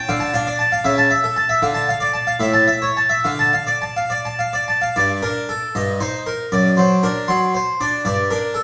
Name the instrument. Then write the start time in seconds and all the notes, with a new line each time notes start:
harpsichord
0.09 D3 F5
0.20 A5
0.34 D4 F5
0.47 D5
0.59 A5
0.72 F5
0.84 C#3 E5
0.98 A5
1.11 E5
1.24 A4
1.36 A5
1.49 E5
1.62 D3 F5
1.75 A5
1.89 F5
2.00 D5
2.14 A5
2.27 F5
2.40 A2 E5
2.54 A5
2.68 E5
2.82 C#5
2.97 A5
3.09 E5
3.24 D3 F5
3.39 A5
3.53 F5
3.67 D5
3.82 A5
3.97 F5
4.10 D5
4.25 A5
4.39 F5
4.53 D5
4.68 A5
4.81 F5
4.96 G2 D5
5.22 D4 A#4
5.49 A4
5.75 G2 D#5
6.01 D#4 C5
6.27 A#4
6.52 F#2 D5
6.77 F#3 C5
7.03 D4 A#4
7.28 F#3 C6
7.55 C5
7.81 D4 D5
8.05 G2 D5
8.30 D4 A#4
8.54 A4